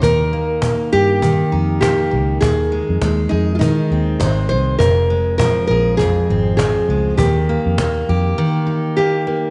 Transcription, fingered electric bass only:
X:1
M:4/4
L:1/16
Q:"Swing 16ths" 1/4=101
K:Ebmix
V:1 name="Fingered electric bass" clef=bass
E,,6 G,,4 F,,4 D,,2 | E,,3 F,, E,,2 F,,3 z E,,2 A,,,2 C,,2 | F,,,6 B,,,4 A,,,4 D,,2 | E,,3 F,, E,,2 F,,2 z8 |]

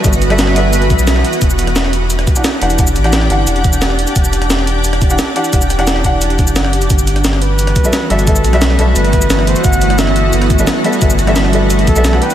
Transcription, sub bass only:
X:1
M:4/4
L:1/16
Q:1/4=175
K:G
V:1 name="Sub bass" clef=bass
G,,,8- G,,,2 B,,, B,,,3 z2 | E,,,8- E,,,2 z4 E,,,2- | E,,,2 A,,,4 G,,,2 E,,,6- E,,, z | E,,,8 E,,,4 z4 |
E,,,8- E,,,3 F,,,4 E,,, | G,,,8- G,,,2 z4 G,,,2- | G,,,2 B,,,4 B,,,2 G,,,6- G,,, z | G,,,8 G,,,4 z4 |
G,,,8- G,,,2 B,,, B,,,3 z2 |]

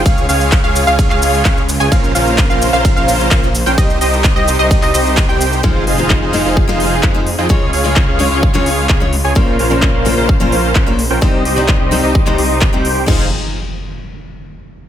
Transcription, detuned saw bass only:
X:1
M:4/4
L:1/16
Q:1/4=129
K:Fm
V:1 name="Detuned saw bass" clef=bass
D,,2 D,,3 D,,2 D,,2 D,,3 z3 D,, | B,,,2 B,,,3 B,,,2 B,,,2 B,,,3 z3 B,,, | C,,2 C,,3 C,,2 C,,2 C,, C,,3 C,,3 | z2 F,,,3 F,,,2 F,,,2 F,,,3 F,,3 F,, |
z2 D,,3 D,,2 D,,2 D,,3 z3 D,, | B,,,2 B,,,3 B,,,2 B,,,2 B,,,3 B,,,3 B,,, | z2 C,,3 C,,2 C,,2 C,, C,,3 C,,3 | F,,,2 z12 z2 |]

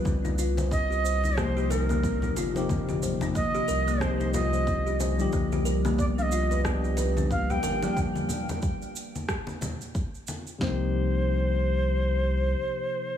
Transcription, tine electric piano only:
X:1
M:4/4
L:1/16
Q:"Swing 16ths" 1/4=91
K:Cm
V:1 name="Tine electric piano"
z8 [C,F,B,EG]6- [C,F,B,EG] [C,F,B,EG]- | [C,F,B,EG]8 [C,F,B,EG]6- [C,F,B,EG] [D,F,G,G]- | [D,F,G,G]8 [F,G,DG]6- [F,G,DG] [F,G,DG]- | [F,G,DG]2 z12 z2 |
[C,F,B,EG]16 |]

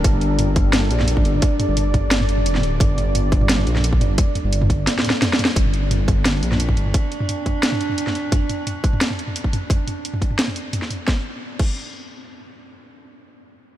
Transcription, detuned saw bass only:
X:1
M:4/4
L:1/16
Q:1/4=174
K:Gm
V:1 name="Detuned saw bass" clef=bass
G,,,8- G,,,2 B,,,4 G,,,2 | z3 G,,,8- G,,, F,,,2 D,,,2 | G,,,8- G,,,2 B,,,4 G,,,2 | z3 G,,,4- G,,, z8 |
G,,,8- G,,,2 B,,,4 G,,,2 | z16 | z16 | z16 |
z16 | z16 |]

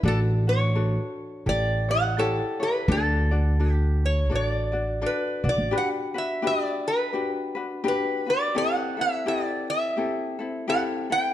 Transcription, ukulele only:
X:1
M:4/4
L:1/8
Q:"Swing" 1/4=85
K:D
V:1 name="Ukulele"
[DFAd] [DF] [DFA]2 [EGA] [EGc] [EGAc] [EGc] | [DFAd] [DFd] [DFA]2 [DFAd] [DFd] [DFAd] [DFd] | [K:G] [DFGB] [DFB] [DFGB]2 [DFGB] [DFB] [DFGB] [DFB] | [CEGA] [CEA] [CEGA]2 [CEGA] [CEA] [CEGA] [CEA] |]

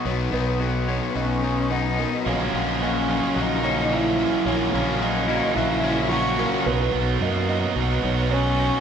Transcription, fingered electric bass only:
X:1
M:4/4
L:1/8
Q:1/4=109
K:B
V:1 name="Fingered electric bass" clef=bass
B,,, B,,,3 B,,,4 | A,,, A,,,3 A,,,4 | A,,, A,,,3 A,,,4 | B,,, B,,, F,,2 B,,, B,,,3 |]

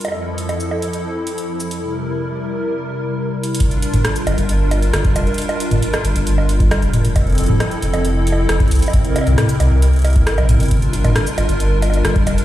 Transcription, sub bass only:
X:1
M:4/4
L:1/16
Q:1/4=135
K:Gdor
V:1 name="Sub bass" clef=bass
z16 | z16 | z3 G,,, z2 G,,, G,,,4- G,,, G,,, z F,,, z | z3 G,,, z2 G,,, G,,,4- G,,, z F,,,2 F,,,- |
F,,,3 F,,, z2 F,,, F,,,4- F,,, F,,, z C,, z | z3 C,, z2 C,, C,,4- C,, z B,,,2 G,,,- | G,,,3 G,,, z2 G,,, G,,,4- G,,, G,,, z F,,, z |]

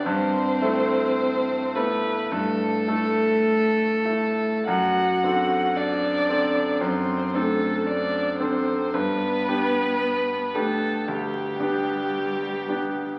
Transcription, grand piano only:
X:1
M:4/4
L:1/8
Q:1/4=55
K:G
V:1 name="Grand piano"
G,, [A,EA]2 [A,EA] G,, [A,EA]2 [A,EA] | F,, [CDA]2 [CDA] F,, [CDA]2 [CDA] | G,, [B,DG]2 [B,DG] D,, [B,DG]2 [B,DG] |]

